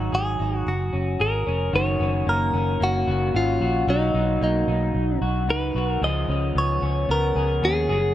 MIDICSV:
0, 0, Header, 1, 4, 480
1, 0, Start_track
1, 0, Key_signature, 6, "major"
1, 0, Tempo, 535714
1, 1552, Time_signature, 4, 2, 24, 8
1, 7295, End_track
2, 0, Start_track
2, 0, Title_t, "Clean electric guitar"
2, 0, Program_c, 0, 27
2, 0, Note_on_c, 0, 66, 90
2, 129, Note_off_c, 0, 66, 0
2, 132, Note_on_c, 0, 68, 92
2, 518, Note_off_c, 0, 68, 0
2, 518, Note_on_c, 0, 66, 92
2, 611, Note_off_c, 0, 66, 0
2, 611, Note_on_c, 0, 66, 76
2, 1085, Note_on_c, 0, 70, 90
2, 1286, Note_off_c, 0, 66, 0
2, 1569, Note_off_c, 0, 70, 0
2, 1573, Note_on_c, 0, 73, 101
2, 2050, Note_off_c, 0, 73, 0
2, 2053, Note_on_c, 0, 70, 98
2, 2537, Note_off_c, 0, 70, 0
2, 2540, Note_on_c, 0, 66, 100
2, 3010, Note_off_c, 0, 66, 0
2, 3014, Note_on_c, 0, 65, 94
2, 3493, Note_on_c, 0, 63, 83
2, 3497, Note_off_c, 0, 65, 0
2, 3964, Note_off_c, 0, 63, 0
2, 3975, Note_on_c, 0, 63, 76
2, 4648, Note_off_c, 0, 63, 0
2, 4932, Note_on_c, 0, 71, 106
2, 5290, Note_off_c, 0, 71, 0
2, 5290, Note_on_c, 0, 70, 106
2, 5410, Note_off_c, 0, 70, 0
2, 5413, Note_on_c, 0, 75, 115
2, 5894, Note_off_c, 0, 75, 0
2, 5898, Note_on_c, 0, 73, 109
2, 6369, Note_off_c, 0, 73, 0
2, 6373, Note_on_c, 0, 70, 90
2, 6854, Note_on_c, 0, 68, 94
2, 6857, Note_off_c, 0, 70, 0
2, 7295, Note_off_c, 0, 68, 0
2, 7295, End_track
3, 0, Start_track
3, 0, Title_t, "Clean electric guitar"
3, 0, Program_c, 1, 27
3, 0, Note_on_c, 1, 54, 77
3, 0, Note_on_c, 1, 63, 58
3, 0, Note_on_c, 1, 68, 68
3, 107, Note_off_c, 1, 68, 0
3, 110, Note_on_c, 1, 68, 60
3, 340, Note_off_c, 1, 63, 0
3, 351, Note_on_c, 1, 63, 51
3, 639, Note_off_c, 1, 68, 0
3, 640, Note_off_c, 1, 63, 0
3, 831, Note_on_c, 1, 61, 50
3, 1070, Note_on_c, 1, 68, 60
3, 1097, Note_off_c, 1, 54, 0
3, 1309, Note_off_c, 1, 61, 0
3, 1313, Note_on_c, 1, 61, 57
3, 1549, Note_on_c, 1, 51, 78
3, 1551, Note_off_c, 1, 68, 0
3, 1554, Note_on_c, 1, 66, 69
3, 1786, Note_off_c, 1, 61, 0
3, 1790, Note_on_c, 1, 61, 60
3, 2031, Note_on_c, 1, 58, 61
3, 2259, Note_off_c, 1, 61, 0
3, 2270, Note_on_c, 1, 61, 62
3, 2508, Note_off_c, 1, 58, 0
3, 2512, Note_on_c, 1, 58, 71
3, 2753, Note_off_c, 1, 66, 0
3, 2756, Note_on_c, 1, 66, 64
3, 2986, Note_off_c, 1, 61, 0
3, 2996, Note_on_c, 1, 61, 61
3, 3236, Note_off_c, 1, 66, 0
3, 3239, Note_on_c, 1, 66, 63
3, 3474, Note_off_c, 1, 51, 0
3, 3477, Note_on_c, 1, 54, 90
3, 3478, Note_off_c, 1, 66, 0
3, 3482, Note_on_c, 1, 66, 69
3, 3522, Note_off_c, 1, 61, 0
3, 3716, Note_on_c, 1, 63, 61
3, 3952, Note_off_c, 1, 58, 0
3, 3956, Note_on_c, 1, 58, 61
3, 4182, Note_off_c, 1, 63, 0
3, 4193, Note_on_c, 1, 63, 62
3, 4434, Note_off_c, 1, 58, 0
3, 4664, Note_off_c, 1, 66, 0
3, 4675, Note_on_c, 1, 66, 63
3, 4906, Note_off_c, 1, 63, 0
3, 4916, Note_on_c, 1, 63, 69
3, 5147, Note_off_c, 1, 66, 0
3, 5157, Note_on_c, 1, 66, 68
3, 5394, Note_off_c, 1, 54, 0
3, 5395, Note_off_c, 1, 66, 0
3, 5397, Note_on_c, 1, 53, 90
3, 5402, Note_on_c, 1, 68, 77
3, 5442, Note_off_c, 1, 63, 0
3, 5635, Note_on_c, 1, 61, 65
3, 5875, Note_on_c, 1, 59, 57
3, 6103, Note_off_c, 1, 61, 0
3, 6114, Note_on_c, 1, 61, 64
3, 6349, Note_off_c, 1, 59, 0
3, 6352, Note_on_c, 1, 59, 76
3, 6591, Note_off_c, 1, 68, 0
3, 6594, Note_on_c, 1, 68, 67
3, 6823, Note_off_c, 1, 61, 0
3, 6834, Note_on_c, 1, 61, 60
3, 7067, Note_off_c, 1, 68, 0
3, 7070, Note_on_c, 1, 68, 71
3, 7295, Note_off_c, 1, 53, 0
3, 7295, Note_off_c, 1, 59, 0
3, 7295, Note_off_c, 1, 61, 0
3, 7295, Note_off_c, 1, 68, 0
3, 7295, End_track
4, 0, Start_track
4, 0, Title_t, "Fingered electric bass"
4, 0, Program_c, 2, 33
4, 114, Note_on_c, 2, 32, 85
4, 324, Note_off_c, 2, 32, 0
4, 356, Note_on_c, 2, 32, 84
4, 566, Note_off_c, 2, 32, 0
4, 596, Note_on_c, 2, 30, 85
4, 805, Note_off_c, 2, 30, 0
4, 836, Note_on_c, 2, 30, 90
4, 1046, Note_off_c, 2, 30, 0
4, 1075, Note_on_c, 2, 32, 88
4, 1285, Note_off_c, 2, 32, 0
4, 1317, Note_on_c, 2, 29, 84
4, 1526, Note_off_c, 2, 29, 0
4, 1552, Note_on_c, 2, 30, 119
4, 1763, Note_off_c, 2, 30, 0
4, 1792, Note_on_c, 2, 30, 102
4, 2004, Note_off_c, 2, 30, 0
4, 2031, Note_on_c, 2, 30, 96
4, 2242, Note_off_c, 2, 30, 0
4, 2271, Note_on_c, 2, 30, 90
4, 2482, Note_off_c, 2, 30, 0
4, 2512, Note_on_c, 2, 30, 84
4, 2723, Note_off_c, 2, 30, 0
4, 2753, Note_on_c, 2, 30, 95
4, 2964, Note_off_c, 2, 30, 0
4, 2995, Note_on_c, 2, 32, 102
4, 3205, Note_off_c, 2, 32, 0
4, 3233, Note_on_c, 2, 34, 93
4, 3444, Note_off_c, 2, 34, 0
4, 3472, Note_on_c, 2, 35, 123
4, 3683, Note_off_c, 2, 35, 0
4, 3709, Note_on_c, 2, 35, 113
4, 3922, Note_off_c, 2, 35, 0
4, 3952, Note_on_c, 2, 35, 97
4, 4163, Note_off_c, 2, 35, 0
4, 4190, Note_on_c, 2, 35, 98
4, 4402, Note_off_c, 2, 35, 0
4, 4432, Note_on_c, 2, 35, 106
4, 4643, Note_off_c, 2, 35, 0
4, 4671, Note_on_c, 2, 35, 100
4, 4910, Note_off_c, 2, 35, 0
4, 4910, Note_on_c, 2, 37, 94
4, 5122, Note_off_c, 2, 37, 0
4, 5150, Note_on_c, 2, 35, 92
4, 5362, Note_off_c, 2, 35, 0
4, 5390, Note_on_c, 2, 37, 118
4, 5602, Note_off_c, 2, 37, 0
4, 5629, Note_on_c, 2, 37, 102
4, 5842, Note_off_c, 2, 37, 0
4, 5871, Note_on_c, 2, 37, 106
4, 6083, Note_off_c, 2, 37, 0
4, 6110, Note_on_c, 2, 37, 100
4, 6322, Note_off_c, 2, 37, 0
4, 6350, Note_on_c, 2, 37, 100
4, 6562, Note_off_c, 2, 37, 0
4, 6590, Note_on_c, 2, 37, 101
4, 6802, Note_off_c, 2, 37, 0
4, 6831, Note_on_c, 2, 39, 93
4, 7043, Note_off_c, 2, 39, 0
4, 7069, Note_on_c, 2, 30, 92
4, 7281, Note_off_c, 2, 30, 0
4, 7295, End_track
0, 0, End_of_file